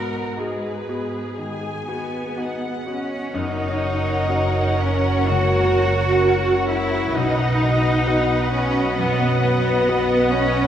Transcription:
Already playing: grand piano G#2 B3 F#4, cello section G#2, viola section A#4, violin section B4 F#5
0.37 grand piano D#4 F#4, viola section G#4, violin section B4
0.89 grand piano B3 F#4
1.38 grand piano D#3, violin section G#5
1.88 grand piano B3 F#4, cello section B3
2.37 grand piano D#4 F#4, violin section F#5
2.86 grand piano B3 F#4, cello section C#4
3.33 double bass section F#1, grand piano F#2, harp F#2, cello section D#4, french horn section F#4 A#4, viola section A#4, clarinet A#4, violin section C#5 F#5, cor anglais C#5, flute F#5
3.82 harp C#4
4.29 grand piano C#4 F#4 A#4, harp A#4
4.79 cello section C#4, harp F#4
5.28 grand piano C#2, harp C#3, cello section F#4
5.77 harp C#4
6.22 grand piano C#4 F#4 A#4, harp A#4
6.69 cello section E4, harp F#4
7.13 double bass section B1, grand piano B1, harp B2, cello section D#4, french horn section F#4 B4, clarinet B4, viola section B4, violin section D#5 F#5, cor anglais D#5, flute F#5
7.61 harp B3
8.07 grand piano B3 F#4 B4, harp B4
8.53 cello section C#4, harp F#4
8.97 grand piano F#2, harp F#3, cello section B3
9.41 cello section B3, harp B3
9.88 grand piano B3 F#4 B4, harp B4
10.32 cello section C#4, harp F#4

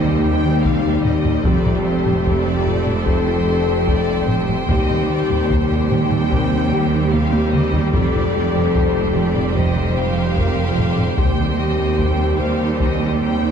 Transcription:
Already playing: tuba D#2, double bass section D#2, cello section D#2, analog synth pad G3 C4 G4 C5, viola section G3 G4, french horn section D#4, violin section C5 D#5 G5
0.04 analog synth bass D#3, synth pluck G3
0.23 analog synth bass D#2, synth pluck D#3, violin section G5
0.44 analog synth bass D#3, synth pluck G3
0.64 analog synth bass D#2, synth pluck C3, violin section F5, taiko
0.84 analog synth bass D#2, synth pluck D#3
1.05 analog synth bass D#2, violin section D#5, taiko low-mid
1.25 analog synth bass D#2, synth pluck D#3, taiko low-mid
1.44 tuba F1, double bass section F1, analog synth bass F2, cello section F2, synth pluck F3, analog synth pad A3 G4 C5, french horn section G4, viola section A4, violin section C5 D5 G5, taiko
1.66 analog synth bass F3, synth pluck C4, taiko low-mid
1.85 analog synth bass F3, violin section C5
2.06 analog synth bass F2, synth pluck A3, taiko low-mid
2.26 analog synth bass F2, synth pluck F3, violin section D5, taiko
2.47 analog synth bass F2
2.67 analog synth bass F3, synth pluck C4, taiko low-mid
2.87 analog synth bass F3, synth pluck C4, taiko low-mid
3.07 analog synth bass F2, synth pluck F3, french horn section A4, violin section C5, taiko
3.26 analog synth bass F3, synth pluck C4
3.47 analog synth bass F2, synth pluck A3
3.67 analog synth bass F3, synth pluck C4
3.88 analog synth bass F2, synth pluck F3, violin section D5, taiko
4.08 analog synth bass F2, synth pluck A3
4.28 analog synth bass F2, violin section C5, taiko low-mid
4.48 analog synth bass F2, synth pluck A3, taiko low-mid
4.69 analog synth bass D#2, cello section D#2, double bass section D#2, tuba D#2, synth pluck C3, viola section G3 G4, analog synth pad G3 C4, french horn section G4, violin section D#5, taiko
4.90 analog synth bass D#3, synth pluck G3, taiko low-mid
5.10 analog synth bass D#3, violin section D5
5.30 analog synth bass D#2, synth pluck D#3, taiko low-mid
5.50 analog synth bass D#2, synth pluck C3, violin section C5, taiko
5.72 analog synth bass D#2
5.91 analog synth bass D#3, synth pluck G3, violin section G5, taiko low-mid
6.11 analog synth bass D#3, synth pluck G3, taiko low-mid
6.32 analog synth bass D#2, synth pluck C3, french horn section C4, taiko
6.51 analog synth bass D#3, synth pluck G3
6.72 analog synth bass D#2, synth pluck D#3, french horn section G4
6.92 analog synth bass D#3, synth pluck G3
7.12 analog synth bass D#2, synth pluck C3, violin section F5, taiko high
7.33 analog synth bass D#2, synth pluck D#3, taiko high
7.53 analog synth bass D#2, violin section D#5, taiko mid
7.73 analog synth bass D#2, synth pluck D#3, taiko low
7.93 double bass section F1, tuba F1, cello section F2, analog synth bass F2, synth pluck F3, analog synth pad G4 C5, french horn section A4, violin section C5 D5 G5, taiko
8.15 analog synth bass F3, synth pluck C4, taiko low-mid
8.35 analog synth bass F3
8.55 analog synth bass F2, synth pluck A3, taiko low-mid
8.75 analog synth bass F2, synth pluck F3, violin section C5, taiko
8.96 analog synth bass F2
9.16 analog synth bass F3, violin section D5, taiko low-mid
9.36 analog synth bass F3, synth pluck C4, taiko low-mid
9.56 analog synth bass F2, synth pluck F3, french horn section C5, violin section D#5, taiko
9.76 analog synth bass F3, synth pluck C4
9.97 analog synth bass F2, synth pluck A3, violin section F5
10.18 analog synth bass F3
10.37 analog synth bass F2, synth pluck F3, french horn section A#4, taiko
10.59 analog synth bass F2, synth pluck A3
10.64 french horn section A4
10.78 analog synth bass F2, taiko low-mid
10.91 french horn section A4
10.98 analog synth bass F2, synth pluck A3, taiko low-mid
11.17 cello section D#2, tuba D#2, double bass section D#2, analog synth bass D#2, synth pluck C3, viola section G3 G4, analog synth pad G3 C4, french horn section G4, violin section G5, taiko
11.39 analog synth bass D#3, synth pluck G3
11.59 analog synth bass D#3, violin section D#5
11.79 analog synth bass D#2, synth pluck D#3
11.99 analog synth bass D#2, synth pluck C3, violin section G5, taiko
12.20 analog synth bass D#2
12.39 analog synth bass D#3, synth pluck G3, french horn section C5, violin section F5
12.60 analog synth bass D#3, synth pluck G3
12.80 analog synth bass D#2, synth pluck C3, violin section D#5, taiko
13.01 analog synth bass D#3, synth pluck G3
13.21 analog synth bass D#2, synth pluck D#3, violin section G5
13.42 analog synth bass D#3, synth pluck G3

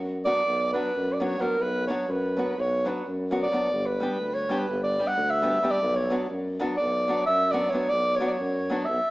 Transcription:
Already playing: tuba F#2
0.25 nylon-string guitar F#3 B3 D4 F#4, alto saxophone D5
0.47 tuba B1
0.73 nylon-string guitar F#3 B3 D4 F#4, alto saxophone B4
0.96 tuba F#2
1.13 alto saxophone D5
1.20 nylon-string guitar F#3 B3 D4 F#4, alto saxophone C#5
1.39 nylon-string guitar F#3 B3 D4 F#4, alto saxophone A#4
1.60 tuba B1, alto saxophone B4
1.87 nylon-string guitar F#3 B3 D4 F#4, alto saxophone C#5
2.08 tuba F#2, alto saxophone B4
2.37 nylon-string guitar F#3 B3 D4 F#4
2.58 tuba B1, alto saxophone C#5
2.85 nylon-string guitar F#3 B3 D4 F#4, alto saxophone B4
3.06 tuba F#2
3.31 nylon-string guitar F#3 B3 D4 F#4
3.43 alto saxophone D5
3.52 nylon-string guitar F#3 B3 D4 F#4
3.71 tuba G1
3.86 alto saxophone B4
4.00 nylon-string guitar G3 B3 D4 G4
4.20 tuba D2
4.34 alto saxophone C#5
4.49 nylon-string guitar G3 B3 D4 G4
4.59 alto saxophone B4
4.69 tuba G1
4.84 alto saxophone D5
4.99 nylon-string guitar G3 B3 D4 G4
5.08 alto saxophone F#5
5.17 tuba D2
5.31 alto saxophone E5
5.42 nylon-string guitar G3 B3 D4 G4
5.63 nylon-string guitar G3 B3 D4 G4
5.71 alto saxophone D5
5.83 tuba B1
5.96 alto saxophone C#5
6.10 nylon-string guitar F#3 B3 D4 F#4
6.30 tuba F#2
6.59 nylon-string guitar F#3 B3 D4 F#4
6.77 tuba B1, alto saxophone D5
7.08 nylon-string guitar F#3 B3 D4 F#4
7.26 tuba F#2, alto saxophone E5
7.51 nylon-string guitar F#3 B3 D4 F#4, alto saxophone D5
7.70 nylon-string guitar F#3 B3, alto saxophone C#5
7.75 nylon-string guitar D4 F#4
7.89 tuba B1, alto saxophone D5
8.16 alto saxophone C#5
8.20 nylon-string guitar F#3 B3 D4 F#4
8.27 alto saxophone C#5 D5
8.40 tuba F#2
8.70 nylon-string guitar F#3 B3 D4 F#4
8.85 alto saxophone E5
8.89 tuba B1

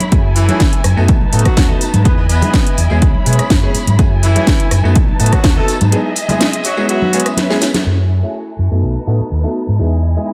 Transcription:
Already playing: violin section E4 C#5 B5
0.00 closed hi-hat, tambourine
0.11 fingered electric bass F#2, grand piano A3 C#4 E4 F#4 G#4, violin section A4 G#5, kick, closed hi-hat, tambourine
0.36 horn section E3 E4, open hi-hat, tambourine
0.48 grand piano A3 C#4 E4 F#4 G#4, closed hi-hat, tambourine, high conga
0.60 kick, snare, closed hi-hat
0.73 closed hi-hat
0.84 fingered electric bass F#2, cross-stick, open hi-hat, tambourine, high conga
0.96 fingered electric bass F#2, grand piano A3 B3 D#4 F#4 A4, tambourine
1.08 fingered electric bass B1, violin section D#4 B4 A5, kick, closed hi-hat, tambourine
1.21 high conga
1.32 fingered electric bass A2, grand piano A3 B3 D#4 F#4 A4, open hi-hat, tambourine
1.39 closed hi-hat
1.45 horn section F#3 F#4, muted fingered electric bass stroke, kick, cross-stick, closed hi-hat, tambourine
1.57 fingered electric bass D#2, kick, snare, closed hi-hat, tambourine, high conga
1.68 grand piano A3 B3 D#4 F#4 A4
1.81 open hi-hat, tambourine
1.93 fingered electric bass G#2, closed hi-hat, tambourine, high conga
2.04 fingered electric bass E2, grand piano G#3 B3 D#4 E4 G#4, horn section B3 B4, violin section E4 D#5 G#5, kick, closed hi-hat, tambourine
2.18 horn section B3 B4
2.29 horn section B3 B4, open hi-hat, tambourine
2.41 grand piano G#3 B3 D#4 E4 G#4, open hi-hat, tambourine, high conga, low conga
2.54 kick, snare, closed hi-hat
2.67 closed hi-hat
2.77 fingered electric bass E2, open hi-hat, tambourine
2.90 fingered electric bass E2, grand piano G#3 B3 C#4 E4 G#4, tambourine
3.02 fingered electric bass C#2, violin section C#5 B5, kick, closed hi-hat
3.14 high conga
3.25 fingered electric bass B2, grand piano G#3 B3 C#4 E4 G#4, open hi-hat, tambourine
3.33 closed hi-hat
3.39 muted fingered electric bass stroke, cross-stick, closed hi-hat, tambourine
3.50 fingered electric bass F#2, kick, snare, closed hi-hat, tambourine, high conga
3.62 grand piano G#3 B3 C#4 E4 G#4
3.74 muted fingered electric bass stroke, open hi-hat, tambourine
3.87 fingered electric bass G#2, closed hi-hat, tambourine, high conga
3.98 fingered electric bass F#2, grand piano A3 C#4 E4 F#4 G#4, violin section E4 A4 G#5, kick, closed hi-hat, tambourine
4.23 horn section E3 E4, open hi-hat, tambourine
4.35 grand piano A3 C#4 E4 F#4 G#4, closed hi-hat, tambourine, high conga
4.47 kick, snare, closed hi-hat
4.60 closed hi-hat
4.71 fingered electric bass F#2, cross-stick, open hi-hat, tambourine, high conga
4.83 fingered electric bass F#2, grand piano A3 B3 D#4 F#4 A4, tambourine
4.95 fingered electric bass B1, violin section D#4 B4 A5, kick, closed hi-hat
5.08 high conga
5.19 fingered electric bass A2, grand piano A3 B3 D#4 F#4 A4, open hi-hat, tambourine
5.26 closed hi-hat
5.33 horn section F#3 F#4, muted fingered electric bass stroke, kick, cross-stick, closed hi-hat
5.44 fingered electric bass D#2, kick, snare, closed hi-hat, tambourine, high conga
5.56 grand piano A3 B3 D#4 F#4 A4, horn section A3 A4
5.68 open hi-hat, tambourine
5.81 fingered electric bass G#2, closed hi-hat, tambourine, high conga
5.91 grand piano G#3 B3 D#4 E4 G#4, violin section G#4 D#5 E5, closed hi-hat, tambourine
6.16 open hi-hat, tambourine
6.28 grand piano G#3 B3 D#4 E4 G#4, open hi-hat, tambourine, high conga, low conga
6.41 snare, closed hi-hat, tambourine
6.53 closed hi-hat
6.64 horn section F#3 F#4, open hi-hat, tambourine
6.77 grand piano G#3 B3 C#4 E4 G#4, tambourine
6.89 horn section F#3 F#4, violin section C#4 B4, closed hi-hat, tambourine
7.02 high conga
7.13 grand piano G#3 B3 C#4 E4 G#4, open hi-hat, tambourine
7.20 closed hi-hat
7.26 cross-stick, closed hi-hat, tambourine
7.37 snare, closed hi-hat, tambourine, high conga
7.49 grand piano G#3 B3 C#4 E4 G#4, snare
7.61 snare, open hi-hat, tambourine
7.74 snare, closed hi-hat, tambourine, high conga
7.85 fingered electric bass F#2, grand piano A3 C#4 E4 F#4 G#4, violin section E4 A4 G#5
8.22 grand piano A3 C#4 E4 F#4 G#4
8.59 fingered electric bass F#2
8.71 fingered electric bass F#2, grand piano A3 B3 D#4 F#4 A4
8.82 fingered electric bass B1, violin section D#4 B4 A5
9.06 fingered electric bass A2, grand piano A3 B3 D#4 F#4 A4
9.20 muted fingered electric bass stroke
9.31 fingered electric bass D#2
9.43 grand piano A3 B3 D#4 F#4 A4
9.68 fingered electric bass G#2
9.79 fingered electric bass E2, grand piano G#3 B3 D#4 E4 G#4, violin section E4 D#5 G#5
10.16 grand piano G#3 B3 D#4 E4 G#4

